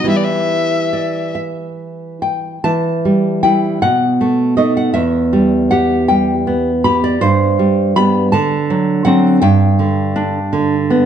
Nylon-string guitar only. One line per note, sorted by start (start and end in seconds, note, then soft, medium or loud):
0.04 2.58 E3 soft
0.04 2.59 G3 soft
0.04 2.22 E4 soft
0.93 1.34 D5 soft
1.35 2.19 E5 soft
2.22 2.62 G5 soft
2.64 3.79 E3 medium
2.64 3.40 A5 medium
3.05 3.43 G3 soft
3.43 3.79 G3 soft
3.43 3.79 E4 soft
3.43 3.80 G5 medium
3.82 4.92 B2 medium
3.82 4.54 F#5 medium
4.21 4.57 A3 soft
4.57 4.92 A3 soft
4.57 4.92 D#4 soft
4.57 4.76 D#5 medium
4.77 4.93 F#5 medium
4.94 7.18 E2 medium
4.94 5.67 E5 medium
5.33 5.93 G3 soft
5.71 6.32 G4 soft
5.71 6.07 F#5 medium
6.08 6.70 G3 soft
6.08 6.82 G5 medium
6.47 7.03 B3 soft
6.84 7.23 G4 medium
6.84 7.03 B5 medium
7.04 7.23 D5 medium
7.21 8.30 G2 medium
7.21 7.93 C5 medium
7.59 7.95 G3 soft
7.96 8.30 G3 soft
7.96 8.30 B3 soft
7.96 8.32 B5 medium
8.32 9.40 D3 medium
8.32 9.03 A5 medium
8.70 9.05 F#3 soft
9.05 9.39 F#3 soft
9.05 9.39 C4 medium
9.05 9.41 F#5 medium
9.42 11.06 G2 medium
9.42 10.12 G5 medium
9.79 10.38 D3 soft
10.16 10.75 D4 medium
10.53 11.06 D3 medium
10.90 11.06 B3 medium